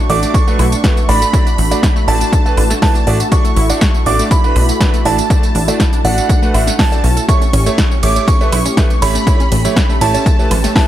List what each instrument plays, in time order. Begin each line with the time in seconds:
Already playing: analog synth pad A3 D4 F#4, supersaw synth C#6, synth bell C#6
0.10 analog synth bass A1, synth pluck A3, grand piano A3 D4 F#4 D5, supersaw synth D6, synth bell D6, open hi-hat
0.23 synth pluck A3, closed hi-hat, tambourine
0.34 synth pluck D4, supersaw synth C#6, synth bell C#6, kick, closed hi-hat, tambourine
0.47 grand piano A3 D4 F#4 B4, synth pluck A3, tambourine
0.59 analog synth bass B1, synth pluck E4, open hi-hat, high woodblock
0.72 synth pluck D4, closed hi-hat, tambourine
0.84 grand piano A3 D4 F#4 B4, synth pluck A3, kick, snare, closed hi-hat, tambourine
0.97 synth pluck A3, closed hi-hat, tambourine
1.09 analog synth bass A1, grand piano A3 D4 F#4 D5, synth pluck D4, supersaw synth B5, synth bell B5, open hi-hat
1.22 synth pluck A3, closed hi-hat, tambourine
1.33 grand piano A3 D4 F#4 D5, synth pluck E4, kick, closed hi-hat, tambourine
1.47 synth pluck D4, closed hi-hat, tambourine
1.58 analog synth bass A1, synth pluck A3, open hi-hat
1.71 grand piano A3 D4 F#4 D5, synth pluck A3, closed hi-hat, tambourine
1.83 synth pluck D4, kick, snare, closed hi-hat, tambourine
1.96 synth pluck A3, tambourine
2.08 analog synth bass A1, grand piano A3 D4 F#4 D5, synth pluck E4, supersaw synth A5, synth bell A5, open hi-hat
2.21 synth pluck D4, closed hi-hat, tambourine
2.33 synth pluck A3, kick, closed hi-hat, tambourine
2.46 synth pluck A3, grand piano A3 D4 F#4 B4, tambourine
2.57 analog synth bass A1, synth pluck D4, open hi-hat, high woodblock
2.70 synth pluck A3, snare, closed hi-hat, tambourine
2.82 grand piano A3 D4 F#4 B4, synth pluck E4, supersaw synth A5, synth bell A5, kick, snare, open hi-hat, tambourine
2.95 synth pluck D4, closed hi-hat, tambourine
3.07 analog synth bass A1, synth pluck A3, grand piano A3 D4 F#4 D5, open hi-hat
3.20 synth pluck A3, closed hi-hat, tambourine
3.32 grand piano A3 D4 F#4 D5, synth pluck D4, analog synth pad E4, supersaw synth C#6, synth bell C#6, kick, closed hi-hat, tambourine
3.45 synth pluck A3, closed hi-hat, tambourine
3.56 analog synth bass A1, synth pluck E4, open hi-hat
3.69 grand piano A3 D4 F#4 D5, synth pluck D4, closed hi-hat, tambourine
3.81 synth pluck A3, kick, snare, closed hi-hat, tambourine
3.94 synth pluck A3, tambourine
4.06 analog synth bass A1, grand piano A3 D4 F#4 D5, synth pluck D4, synth bell D6, supersaw synth D6, open hi-hat
4.19 synth pluck A3, closed hi-hat, tambourine
4.31 synth pluck E4, supersaw synth B5, synth bell B5, kick, closed hi-hat, tambourine
4.44 grand piano A3 D4 F#4 B4, synth pluck D4, tambourine
4.56 analog synth bass B1, synth pluck A3, open hi-hat, high woodblock
4.69 synth pluck A3, closed hi-hat, tambourine
4.81 grand piano A3 D4 F#4 B4, synth pluck D4, kick, snare, closed hi-hat, tambourine
4.94 synth pluck A3, closed hi-hat, tambourine
5.05 analog synth bass A1, grand piano A3 D4 F#4 D5, synth pluck E4, supersaw synth A5, synth bell A5, open hi-hat
5.18 synth pluck D4, closed hi-hat, tambourine
5.30 grand piano A3 D4 F#4 D5, synth pluck A3, kick, closed hi-hat, tambourine
5.43 synth pluck A3, closed hi-hat, tambourine
5.55 analog synth bass A1, synth pluck D4, open hi-hat
5.68 synth pluck A3, grand piano A3 D4 F#4 D5, closed hi-hat, tambourine
5.80 synth pluck E4, kick, snare, closed hi-hat, tambourine
5.93 synth pluck D4, closed hi-hat, tambourine
6.05 analog synth bass A1, synth pluck A3, grand piano A3 D4 F#4 D5, supersaw synth F#5, synth bell F#5, open hi-hat
6.18 synth pluck A3, closed hi-hat, tambourine
6.29 synth pluck D4, kick, closed hi-hat, tambourine
6.42 grand piano A3 D4 F#4 B4, synth pluck A3, tambourine
6.54 analog synth bass A1, grand piano A3 D4 F#4 E5, synth pluck D4, open hi-hat, high woodblock
6.67 synth pluck A3, snare, closed hi-hat, tambourine
6.79 synth pluck A3, supersaw synth A5, synth bell A5, kick, snare, open hi-hat, tambourine
6.92 grand piano A3 D4 F#4 D5, synth pluck A4, closed hi-hat, tambourine
7.04 analog synth bass B1, synth pluck C#4, open hi-hat
7.17 synth pluck A4, closed hi-hat, tambourine
7.28 synth pluck A3, grand piano A3 E4 G4 C#5, analog synth pad A3 C#4 G4, supersaw synth C#6, synth bell C#6, kick, closed hi-hat, tambourine, high bongo
7.41 synth pluck A3, closed hi-hat, tambourine, high conga
7.53 analog synth bass A1, synth pluck C#4, open hi-hat, ride, high bongo
7.66 synth pluck A3, grand piano A3 E4 G4 C#5, closed hi-hat, tambourine
7.78 synth pluck E4, kick, snare, closed hi-hat, tambourine, high bongo
7.91 synth pluck C#4, tambourine
8.03 analog synth bass A1, synth pluck A3, grand piano A3 E4 G4 C#5, supersaw synth D6, synth bell D6, open hi-hat, ride
8.16 synth pluck A3, closed hi-hat, tambourine, high bongo
8.28 synth pluck C#4, supersaw synth C#6, synth bell C#6, kick, closed hi-hat, tambourine
8.41 synth pluck A3, grand piano A3 E4 G4 B4, tambourine, high bongo
8.52 analog synth bass B1, synth pluck E4, open hi-hat, ride, high woodblock
8.65 synth pluck C#4, closed hi-hat, tambourine, high bongo
8.77 synth pluck A3, grand piano A3 E4 G4 B4, kick, snare, closed hi-hat, tambourine, high conga
8.90 synth pluck A3, closed hi-hat, tambourine
9.02 analog synth bass A1, grand piano A3 E4 G4 C#5, synth pluck C#4, supersaw synth B5, synth bell B5, open hi-hat, ride, high bongo
9.15 synth pluck A3, closed hi-hat, tambourine, high conga
9.27 grand piano A3 E4 G4 C#5, synth pluck E4, kick, closed hi-hat, tambourine, high bongo
9.40 synth pluck C#4, closed hi-hat, tambourine, high conga
9.51 analog synth bass A1, synth pluck A3, open hi-hat, ride, high bongo
9.65 synth pluck A3, grand piano A3 E4 G4 C#5, closed hi-hat, tambourine, low conga
9.76 synth pluck C#4, kick, snare, closed hi-hat, tambourine
9.89 synth pluck A3, tambourine, high bongo
10.01 analog synth bass A1, grand piano A3 E4 G4 C#5, synth pluck E4, supersaw synth A5, synth bell A5, open hi-hat, ride
10.14 synth pluck C#4, closed hi-hat, tambourine, high bongo
10.26 synth pluck A3, kick, closed hi-hat, tambourine
10.39 synth pluck A3, grand piano A3 E4 G4 B4, tambourine, high bongo
10.51 analog synth bass A1, synth pluck C#4, open hi-hat, ride, low conga, high woodblock
10.64 synth pluck A3, snare, closed hi-hat, tambourine
10.76 grand piano A3 E4 G4 B4, synth pluck E4, supersaw synth A5, synth bell A5, kick, snare, open hi-hat, tambourine, high bongo, high conga